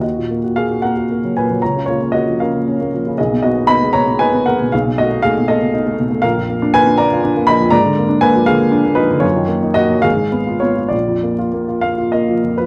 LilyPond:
<<
  \new Staff \with { instrumentName = "Upright piano" } { \time 6/8 \key ees \minor \tempo 4. = 77 <ges' ees''>4 <aes' f''>8 <bes' ges''>4 <ces'' aes''>8 | <des'' bes''>8 <f' des''>8 <ges' ees''>8 <bes' f''>4 r8 | <aes' ees''>8 <ges' ees''>8 <ees'' ces'''>8 <des'' bes''>8 <ces'' aes''>8 <bes' ges''>8 | <aes' f''>8 <ges' dis''>8 <aes' f''>8 <a' dis''>4. |
<bes' f''>4 <ces'' aes''>8 <d'' bes''>4 <ees'' ces'''>8 | <d'' bes''>4 <ces'' aes''>8 <aes' f''>4 <ees' ces''>8 | <f' des''>4 <ges' ees''>8 <aes' f''>4 <f' des''>8 | <f' d''>4. f''8 ees''8. ces''16 | }
  \new Staff \with { instrumentName = "Upright piano" } { \time 6/8 \key ees \minor ees,16 bes,16 bes16 ges'16 bes16 ges'16 bes16 ges'16 bes16 ges16 bes,16 ges16 | des,16 des16 bes16 des'16 bes16 f16 des16 bes16 des'16 bes16 f16 des16 | ces,16 ces16 ces'16 ees'16 ces'16 aes16 ces16 ces'16 ees'16 ces'16 aes16 ces16 | b,,16 b,16 a16 dis'16 a16 b,16 a16 b,16 dis'16 a16 b,16 a16 |
bes,,16 f,16 bes16 d'16 f'16 d'16 bes16 f'16 d'16 bes16 f16 f,16 | aes,16 d16 bes16 d'16 bes16 f16 d16 bes16 d'16 bes16 f16 d16 | ges,16 ees16 bes16 ees'16 bes16 ges16 aes,,16 aes,16 ces'16 f'16 ces'16 f'16 | bes,,16 f,16 bes16 f'16 bes16 f'16 bes16 f'16 bes16 f16 f,16 f16 | }
>>